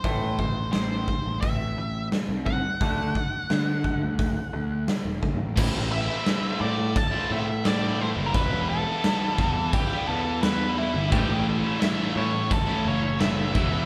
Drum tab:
CC |--------|--------|x-x-x-x-|x-x-x-x-|
HH |o-o-o-o-|o-o-o-o-|--------|--------|
SD |--o---o-|--o---o-|--o---o-|--o---o-|
BD |oo-oo--o|oo-oo--o|o---o---|o--oo---|

CC |x-x-x-x-|
HH |--------|
SD |--o---o-|
BD |o---o--o|